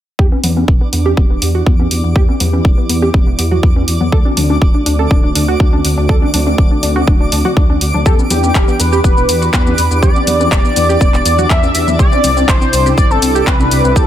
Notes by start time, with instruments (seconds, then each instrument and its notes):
0.19 detuned saw bass E2, analog synth pad E3 B3 D4 G4, synth arpeggio sound G4, synth texture D5 D6, kick
0.32 synth arpeggio sound B3, high conga
0.43 detuned saw bass E2, synth arpeggio sound B3, open hi-hat, low conga
0.57 synth arpeggio sound B3, high conga
0.68 detuned saw bass E1, kick
0.81 synth arpeggio sound B3
0.93 detuned saw bass E2, synth arpeggio sound B3, open hi-hat
1.06 synth arpeggio sound G4, high conga
1.17 detuned saw bass E1, synth arpeggio sound B3, kick
1.30 synth arpeggio sound B3
1.42 detuned saw bass E2, synth arpeggio sound B3, open hi-hat
1.55 synth arpeggio sound F#4
1.66 detuned saw bass E2, synth arpeggio sound B3, kick
1.79 synth arpeggio sound B3, high conga
1.91 detuned saw bass E2, open hi-hat
2.04 detuned saw bass E2, synth arpeggio sound B3
2.16 analog synth pad E4, synth arpeggio sound G4, kick
2.29 synth arpeggio sound B3, high conga
2.40 detuned saw bass E2, synth arpeggio sound B3, open hi-hat, low conga
2.53 synth arpeggio sound B3, high conga
2.65 detuned saw bass E1, kick
2.78 synth arpeggio sound B3
2.89 detuned saw bass E2, synth arpeggio sound B3, open hi-hat
3.02 synth arpeggio sound G4, high conga
3.14 detuned saw bass E1, synth arpeggio sound B3, kick
3.27 synth arpeggio sound B3
3.39 detuned saw bass E2, synth arpeggio sound B3, open hi-hat
3.51 synth arpeggio sound F#4, low conga
3.63 synth arpeggio sound B3, kick
3.76 synth arpeggio sound B3, high conga
3.88 detuned saw bass E2, open hi-hat
4.01 detuned saw bass E2, synth arpeggio sound B3, low conga
4.12 detuned saw bass D2, analog synth pad D3 A3 C4 F#4, synth arpeggio sound A4, kick
4.25 synth arpeggio sound D4, high conga
4.37 detuned saw bass D2, synth arpeggio sound D4, open hi-hat, low conga
4.50 synth arpeggio sound D4, high conga
4.62 detuned saw bass D1, kick
4.74 synth arpeggio sound D4
4.86 detuned saw bass D2, synth arpeggio sound D4, open hi-hat
4.99 synth arpeggio sound A4, high conga
5.11 detuned saw bass D1, synth arpeggio sound D4, kick
5.24 synth arpeggio sound D4
5.35 detuned saw bass D2, synth arpeggio sound D4, open hi-hat
5.48 synth arpeggio sound F#4
5.60 detuned saw bass D2, synth arpeggio sound D4, kick
5.73 synth arpeggio sound D4, high conga
5.85 detuned saw bass D2, open hi-hat
5.98 detuned saw bass D2, synth arpeggio sound D4
6.09 synth arpeggio sound A4, kick
6.22 synth arpeggio sound D4, high conga
6.34 detuned saw bass D2, synth arpeggio sound D4, open hi-hat, low conga
6.47 synth arpeggio sound D4, high conga
6.58 detuned saw bass D1, kick
6.71 synth arpeggio sound D4
6.83 detuned saw bass D2, synth arpeggio sound D4, open hi-hat
6.96 synth arpeggio sound F#4, high conga
7.07 detuned saw bass D1, synth arpeggio sound D4, kick
7.20 synth arpeggio sound D4
7.32 detuned saw bass D2, synth arpeggio sound D4, open hi-hat
7.45 synth arpeggio sound F#4, low conga
7.57 detuned saw bass D2, synth arpeggio sound D4, kick
7.70 synth arpeggio sound D4, high conga
7.81 detuned saw bass D2, open hi-hat
7.94 detuned saw bass D2, synth arpeggio sound D4, low conga
8.06 detuned saw bass E2, analog synth pad E3 B3 D4 G4, synth arpeggio sound G4, analog synth lead A4, kick, shaker
8.19 synth arpeggio sound B3, high conga, shaker
8.30 detuned saw bass E2, synth arpeggio sound B3, analog synth lead G4, open hi-hat, low conga, shaker
8.43 synth arpeggio sound B3, high conga, shaker
8.55 detuned saw bass E1, kick, clap, shaker
8.68 synth arpeggio sound B3, shaker
8.80 detuned saw bass E2, synth arpeggio sound B3, analog synth lead B4, open hi-hat, shaker
8.93 synth arpeggio sound G4, high conga, shaker
9.04 detuned saw bass E1, synth arpeggio sound B3, kick, shaker
9.17 synth arpeggio sound B3, shaker
9.29 detuned saw bass E2, synth arpeggio sound B3, open hi-hat, shaker
9.42 synth arpeggio sound F#4, shaker
9.53 detuned saw bass E2, synth arpeggio sound B3, analog synth lead B4, kick, clap, shaker
9.66 synth arpeggio sound B3, high conga, shaker
9.78 detuned saw bass E2, open hi-hat, shaker
9.91 detuned saw bass E2, synth arpeggio sound B3, shaker
10.02 detuned saw bass E2, synth arpeggio sound G4, analog synth lead D5, kick, shaker
10.16 synth arpeggio sound B3, high conga, shaker
10.27 detuned saw bass E2, synth arpeggio sound B3, open hi-hat, low conga, shaker
10.40 synth arpeggio sound B3, high conga, shaker
10.52 detuned saw bass E1, kick, clap, shaker
10.65 synth arpeggio sound B3, shaker
10.76 detuned saw bass E2, synth arpeggio sound B3, open hi-hat, shaker
10.89 synth arpeggio sound G4, high conga, shaker
11.01 detuned saw bass E1, synth arpeggio sound B3, kick, shaker
11.14 synth arpeggio sound B3, clap, shaker
11.25 detuned saw bass E2, synth arpeggio sound B3, open hi-hat, shaker
11.38 synth arpeggio sound F#4, low conga, shaker
11.50 detuned saw bass E2, synth arpeggio sound B3, analog synth lead E5, kick, clap, shaker
11.63 synth arpeggio sound B3, high conga, shaker
11.75 detuned saw bass E2, open hi-hat, shaker
11.88 detuned saw bass E2, synth arpeggio sound B3, low conga, shaker
11.99 detuned saw bass C2, analog synth pad C3 C4 E4, synth arpeggio sound G4, analog synth lead D5, kick, shaker
12.12 synth arpeggio sound C4, high conga, shaker
12.24 detuned saw bass C2, synth arpeggio sound C4, open hi-hat, low conga, shaker
12.37 synth arpeggio sound C4, high conga, shaker
12.48 detuned saw bass G1, analog synth lead C5, kick, clap, shaker
12.61 synth arpeggio sound C4, shaker
12.73 detuned saw bass C2, synth arpeggio sound C4, open hi-hat, shaker
12.86 synth arpeggio sound G4, high conga, shaker
12.98 detuned saw bass G1, synth arpeggio sound C4, analog synth lead D5, kick, shaker
13.11 synth arpeggio sound C4, analog synth lead A4, shaker
13.22 detuned saw bass C2, synth arpeggio sound C4, open hi-hat, shaker
13.35 synth arpeggio sound G4, shaker
13.47 detuned saw bass C2, synth arpeggio sound C4, analog synth lead B4, kick, clap, shaker
13.60 synth arpeggio sound C4, high conga, shaker
13.71 detuned saw bass C2, open hi-hat, shaker
13.84 detuned saw bass C2, synth arpeggio sound C4, shaker
13.96 detuned saw bass C2, synth arpeggio sound G4, analog synth lead A4, kick, shaker